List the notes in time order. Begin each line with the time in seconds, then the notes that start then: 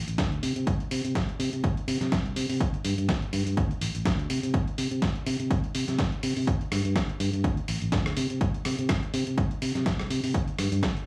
0.08 A1, closed hi-hat
0.18 D2, kick, snare, closed hi-hat
0.32 closed hi-hat
0.43 C3, open hi-hat
0.56 C3, closed hi-hat
0.67 C2, kick, closed hi-hat
0.80 closed hi-hat
0.91 C3, open hi-hat
1.05 C3, closed hi-hat
1.15 C2, kick, snare, closed hi-hat
1.29 closed hi-hat
1.39 C3, open hi-hat
1.53 C3, closed hi-hat
1.64 C2, kick, closed hi-hat
1.77 muted fingered electric bass stroke, closed hi-hat
1.88 C3, open hi-hat
2.01 C3, snare, closed hi-hat
2.12 C2, kick, snare, closed hi-hat
2.26 closed hi-hat
2.36 C3, open hi-hat
2.49 C3, open hi-hat
2.60 G1, kick, closed hi-hat
2.74 closed hi-hat
2.85 G2, open hi-hat
2.98 G2, closed hi-hat
3.09 G1, kick, snare, closed hi-hat
3.22 closed hi-hat
3.33 G2, open hi-hat
3.46 G2, closed hi-hat
3.57 D2, kick, closed hi-hat
3.71 closed hi-hat
3.81 A1, open hi-hat
3.95 A1, closed hi-hat
4.05 D2, kick, snare, closed hi-hat
4.19 closed hi-hat
4.30 C3, open hi-hat
4.43 C3, closed hi-hat
4.54 C2, kick, closed hi-hat
4.68 closed hi-hat
4.78 C3, open hi-hat
4.91 C3, closed hi-hat
5.02 C2, kick, snare, closed hi-hat
5.15 closed hi-hat
5.26 C3, open hi-hat
5.40 C3, closed hi-hat
5.51 C2, kick, closed hi-hat
5.64 muted fingered electric bass stroke, closed hi-hat
5.75 C3, open hi-hat
5.88 C3, snare, closed hi-hat
5.99 C2, kick, snare, closed hi-hat
6.12 closed hi-hat
6.23 C3, open hi-hat
6.37 C3, open hi-hat
6.47 G1, kick, closed hi-hat
6.61 closed hi-hat
6.72 G2, cross-stick, open hi-hat
6.85 G2, closed hi-hat
6.96 G1, kick, cross-stick, snare, closed hi-hat
7.09 closed hi-hat
7.20 G2, open hi-hat
7.33 G2, closed hi-hat
7.44 D2, kick, closed hi-hat
7.57 closed hi-hat
7.68 A1, open hi-hat
7.82 A1, closed hi-hat
7.92 D2, kick, snare, closed hi-hat
8.06 cross-stick, closed hi-hat
8.17 C3, open hi-hat
8.30 C3, closed hi-hat
8.41 C2, kick, closed hi-hat
8.54 closed hi-hat
8.65 C3, cross-stick, open hi-hat
8.79 C3, closed hi-hat
8.89 C2, kick, cross-stick, snare, closed hi-hat
9.03 closed hi-hat
9.14 C3, open hi-hat
9.27 C3, closed hi-hat
9.38 C2, kick, closed hi-hat
9.51 closed hi-hat
9.62 C3, open hi-hat
9.75 C3, snare, closed hi-hat
9.86 C2, kick, snare, closed hi-hat
9.99 cross-stick, closed hi-hat
10.10 C3, open hi-hat
10.24 C3, open hi-hat
10.34 G1, kick, closed hi-hat
10.48 closed hi-hat
10.59 G2, cross-stick, open hi-hat
10.72 G2, closed hi-hat
10.83 G1, kick, cross-stick, snare, closed hi-hat
10.97 closed hi-hat